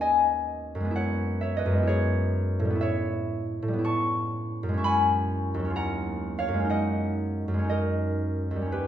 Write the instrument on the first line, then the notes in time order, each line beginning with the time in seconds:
harp
Already playing: D#2 A#3 C#4 F#4 A#4 C#5
0.01 D#5 G#5
0.75 F#2
0.80 G#3
0.85 B3
0.91 E4
0.96 C#5 F#5
1.41 C#5 E5
1.57 B4 D#5
1.66 F#2
1.72 G#3
1.77 B3
1.83 E4
1.87 G#4 C#5
2.59 A2
2.65 G3
2.70 B3
2.75 E4
2.81 C#5 E5
3.62 A2
3.68 G3
3.73 B3
3.79 E4
3.85 A5 C#6
4.63 F#2
4.69 G#3
4.74 C#4 C#6
4.79 E4
4.84 G#5 B5
5.54 D#2
5.59 F#3
5.65 C#4
5.70 F4
5.76 F#5 A#5
6.39 C#5 F5
6.48 F#2
6.54 G#3
6.59 C#4
6.65 D#4
6.70 D#5 F#5
7.48 F#2
7.54 G#3
7.59 C#4
7.64 D#4
7.69 A#4 D#5
8.51 D#2
8.56 G3
8.62 C#4
8.66 D#4
8.72 G4 B4